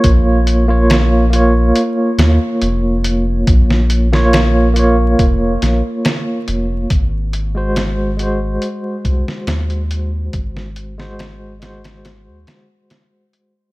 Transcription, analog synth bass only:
\new Staff \with { instrumentName = "Analog synth bass" } { \clef bass \time 4/4 \key bes \minor \tempo 4 = 70 bes,,2 r8 ees,16 r16 f,,4 | bes,,2 f,,8 bes,,16 r8. f,,8 | aes,,2 r8 c,16 r16 ees,4 | aes,,2~ aes,,16 ees,16 r4. | }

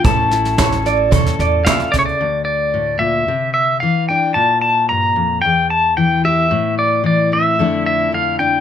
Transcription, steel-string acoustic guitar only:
\new Staff \with { instrumentName = "Steel-string acoustic guitar" } { \clef bass \time 4/4 \key d \minor \tempo 4 = 112 << { <cis' e' a'>8 e'8 a'8 e'8 a'2 | r2. r8 d'8 | r2. r8 g'8 | r4. c'8 <d a d' e'>4. d'8 | } \\ { a,4 cis'4 a,4 bes,8 cis8 | d,4 a,8 bes,8 c4 e4 | bes,4 g,8 f,8 e,4 e4 | a,4 e4 f,4 d4 | } >> }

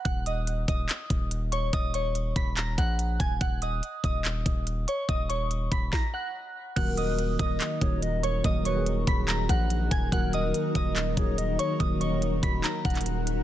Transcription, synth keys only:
\new Staff \with { instrumentName = "Synth keys" } { \time 4/4 \key ees \minor \tempo 4 = 143 r1 | r1 | r1 | r1 |
<ees ges bes ges' bes'>4. <ees ges bes ges' bes'>4 <ees ges bes ges' bes'>4. | <ees ges bes ges' bes'>8. <ees ges bes ges' aes'>4.~ <ees ges bes ges' aes'>16 r4. | <ees ges bes ges' bes'>4. <ees ges bes ges' bes'>4 <ees ges bes ges' aes'>4. | <ees ges bes ges' bes'>8. <ees ges bes ges' bes'>4.~ <ees ges bes ges' bes'>16 r4. | }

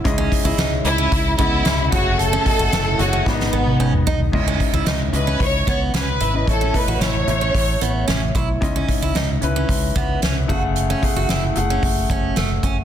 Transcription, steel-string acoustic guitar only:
\new Staff \with { instrumentName = "Steel-string acoustic guitar" } { \time 4/4 \key cis \minor \tempo 4 = 112 r16 cis'16 r16 e'16 dis'16 r8 cis'16 r8 b8 cis'16 r16 fis'16 r16 | r16 cis'16 r16 fis'16 e'16 r8 cis'16 r8 b8 cis'16 r16 dis'16 r16 | r16 cis'16 r16 e'16 dis'16 r8 cis'16 r8 b8 cis'16 r16 e'16 r16 | r16 cis'16 r16 fis'16 e'16 r8 cis'16 r8 b8 cis'16 r16 e'16 r16 |
r16 cis'16 r16 e'16 dis'16 r8 cis'16 r8 b8 cis'16 r16 fis'16 r16 | r16 cis'16 r16 fis'16 e'16 r8 cis'16 r8 cis'8 a16 r16 cis'16 r16 | }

